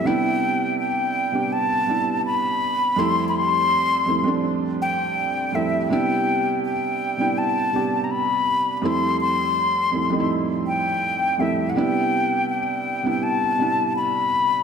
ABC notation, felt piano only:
X:1
M:4/4
L:1/16
Q:1/4=82
K:C
V:1 name="Felt piano"
[C,G,B,DE]4 z3 [C,G,B,DG]2 z [C,G,B,DE]4 z2 | [F,,G,A,CE]4 z2 [F,,G,A,CE] [F,,G,A,CD]4 z3 [F,,G,A,CE] z | [C,G,B,DE]4 z3 [C,G,B,DE]2 z [C,G,B,DG]4 z2 | [F,,G,A,CE]4 z2 [F,,G,A,CE] [F,,G,A,C_E=E]4 z3 [F,,G,A,CE] z |
[C,G,B,DE]4 z3 [C,G,B,DE]2 z [C,G,B,DE]4 z2 |]